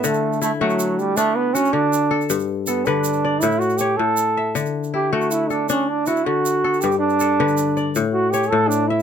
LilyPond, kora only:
<<
  \new Staff \with { instrumentName = "Kora" } { \time 12/8 \key d \major \tempo 4. = 106 e''8 r8 e'8 fis'4. r4 fis'4. a'8~ | a'8 r8 a'8 b'4 d''4 r8 cis''4. e''8~ | e''8 r8 e'8 fis'4 a'4. fis'4. a'8~ | a'8 r8 a'8 b'4 d''4 r8 cis''4. e''8 | }
  \new Staff \with { instrumentName = "Kora" } { \clef bass \time 12/8 \key d \major d4 r8 a4 r8 d'4 r8 d4 r8 | g,4 r8 d4 r8 a,4 r8 a,4 r8 | d4 r8 a4 r8 d'4 r8 d4 r8 | g,4 r8 d4 r8 a,4 r8 a,4 r8 | }
>>